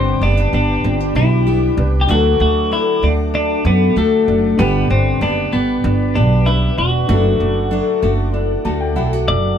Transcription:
0.00 0.16 G1 medium
0.00 0.21 G2 medium
0.00 2.09 D3 medium
0.00 0.20 G3 medium
0.00 0.52 B3 medium
0.00 0.23 C4 medium
0.00 0.22 D4 medium
0.00 1.73 D4 medium
0.00 0.22 G4 medium
0.00 1.45 G4 medium
0.00 1.74 G4 medium
0.00 1.75 B4 medium
0.00 2.07 B4 medium
0.00 2.07 G5 medium
0.00 9.55 D6 medium
0.21 0.47 F#1 medium
0.21 0.53 G3 medium
0.21 0.53 B3 medium
0.21 0.37 C4 medium
0.21 0.53 D4 loud
0.21 0.52 D4 medium
0.21 0.52 G4 medium
0.37 0.84 D4 medium
0.53 0.78 G1 medium
0.53 1.16 G3 soft
0.53 1.15 B3 medium
0.53 1.16 B3 soft
0.53 1.16 D4 medium
0.53 1.16 D4 loud
0.53 1.15 G4 medium
0.84 1.10 G1 loud
0.84 1.00 C4 medium
1.00 1.77 D4 medium
1.15 1.66 B1 loud
1.15 1.46 G3 soft
1.15 2.15 B3 medium
1.15 1.46 B3 soft
1.15 1.47 D4 medium
1.15 1.74 E4 loud
1.15 1.47 G4 medium
1.47 2.09 G3 medium
1.47 2.09 B3 medium
1.47 2.10 D4 medium
1.47 2.09 G4 medium
1.47 2.10 G4 medium
1.76 2.03 C2 loud
1.76 2.06 D4 soft
1.76 2.71 D4 medium
1.76 2.09 G4 soft
1.76 2.09 B4 medium
2.01 2.09 G4 medium
2.07 2.34 D2 loud
2.07 4.59 D3 medium
2.07 4.59 F#3 medium
2.07 2.70 A3 medium
2.07 4.54 D4 medium
2.07 2.72 D4 medium
2.07 2.16 E4 medium
2.07 3.96 F#4 medium
2.07 2.72 F#4 medium
2.07 2.40 F#4 loud
2.07 4.57 A4 medium
2.07 2.72 A4 medium
2.07 4.57 F#5 medium
2.11 4.56 A4 medium
2.16 4.58 F#4 medium
2.40 2.79 D2 loud
2.40 3.01 A3 medium
2.40 2.72 F#4 loud
2.71 3.03 A3 medium
2.71 3.33 D4 medium
2.71 3.03 D4 medium
2.71 3.04 E4 loud
2.71 3.03 F#4 medium
2.71 3.02 A4 medium
3.02 3.54 D2 medium
3.02 3.65 A3 medium
3.02 3.12 D4 medium
3.02 3.67 D4 soft
3.02 3.65 F#4 medium
3.02 3.64 A4 medium
3.34 4.28 D4 medium
3.34 3.64 D4 loud
3.65 3.91 F#2 loud
3.65 4.59 A3 medium
3.65 3.95 B3 loud
3.65 3.96 D4 soft
3.65 3.97 F#4 medium
3.65 3.96 A4 medium
3.96 4.22 D2 medium
3.96 4.59 A3 medium
3.96 4.61 A3 loud
3.96 4.60 D4 medium
3.96 4.59 F#4 medium
3.96 4.60 F#4 medium
3.96 4.60 A4 medium
4.28 4.53 F#1 medium
4.28 5.21 D4 medium
4.57 4.84 G1 loud
4.57 5.22 G2 medium
4.57 8.09 D3 medium
4.57 5.20 G3 medium
4.57 4.90 B3 loud
4.57 4.89 B3 medium
4.57 6.42 D4 medium
4.57 5.22 D4 medium
4.57 6.43 G4 medium
4.57 6.47 G4 medium
4.57 5.22 G4 medium
4.57 7.07 B4 medium
4.57 6.43 B4 medium
4.57 7.07 D5 medium
4.90 5.16 G1 loud
4.90 5.52 B3 medium
4.90 5.20 C4 medium
5.21 5.47 F#1 medium
5.21 5.52 G3 medium
5.21 5.53 B3 medium
5.21 5.84 D4 medium
5.21 5.54 D4 loud
5.21 5.52 D4 medium
5.21 5.51 G4 medium
5.52 5.78 G1 medium
5.52 6.16 G3 soft
5.52 6.17 B3 medium
5.52 6.15 B3 medium
5.52 6.16 D4 medium
5.52 6.14 G4 medium
5.84 6.17 G1 loud
5.84 6.78 D4 medium
6.15 6.67 B1 medium
6.15 6.45 G3 soft
6.15 7.09 B3 medium
6.15 6.46 B3 medium
6.15 6.47 D4 medium
6.15 6.46 G4 medium
6.46 7.08 G3 medium
6.46 7.09 G3 soft
6.46 7.08 B3 medium
6.46 7.06 D4 soft
6.46 7.09 D4 medium
6.46 6.78 E4 loud
6.46 7.10 B4 medium
6.78 7.03 E1 medium
6.78 7.71 D4 medium
6.78 8.36 F#4 medium
7.07 7.34 F#1 loud
7.07 7.70 F#3 medium
7.07 7.40 A3 medium
7.07 9.54 D4 medium
7.07 7.71 D4 medium
7.07 9.55 F#4 medium
7.07 7.71 F#4 medium
7.07 8.96 F#4 medium
7.07 9.57 A4 medium
7.07 7.72 A4 medium
7.07 9.56 A4 medium
7.07 9.57 F#5 medium
7.40 7.79 F#1 medium
7.40 8.01 A3 medium
7.71 8.02 F#3 medium
7.71 8.33 D4 medium
7.71 8.03 D4 medium
7.71 8.03 F#4 medium
7.71 8.01 A4 medium
8.02 8.54 F#1 medium
8.02 8.64 A3 medium
8.02 8.66 D4 medium
8.02 8.64 F#4 medium
8.02 8.63 A4 medium
8.34 9.28 D4 medium
8.34 9.24 E4 medium
8.65 8.96 D2 medium
8.65 9.58 A3 medium
8.65 8.95 D4 soft
8.65 8.96 F#4 medium
8.65 8.96 A4 medium
8.65 8.80 A5 medium
8.80 8.95 G5 medium
8.96 9.30 B1 medium
8.96 9.58 F#3 medium
8.96 9.58 D4 medium
8.96 9.13 E4 medium
8.96 9.58 F#4 medium
8.96 9.58 A4 medium
8.96 9.26 F#5 medium
9.13 9.58 F#4 medium
9.28 9.54 F#1 loud
9.28 9.58 D4 medium
9.28 9.58 D5 loud
9.28 9.57 E5 medium

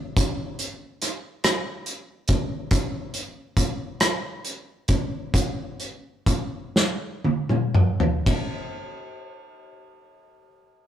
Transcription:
0.17 kick medium
0.17 closed hi-hat medium
0.59 closed hi-hat soft
1.02 cross-stick soft
1.02 closed hi-hat medium
1.44 cross-stick medium
1.44 closed hi-hat medium
1.86 closed hi-hat soft
2.28 kick medium
2.28 closed hi-hat soft
2.71 kick medium
2.71 closed hi-hat medium
3.14 closed hi-hat soft
3.57 kick medium
3.57 closed hi-hat medium
4.00 cross-stick medium
4.00 closed hi-hat medium
4.45 closed hi-hat soft
4.88 kick medium
4.88 closed hi-hat soft
5.34 kick medium
5.34 closed hi-hat medium
5.80 closed hi-hat soft
6.26 kick medium
6.26 closed hi-hat medium
6.76 snare soft
7.24 high tom soft
7.49 mid tom soft
7.75 mid tom medium
8.00 floor tom medium
8.26 kick medium
8.26 ride medium

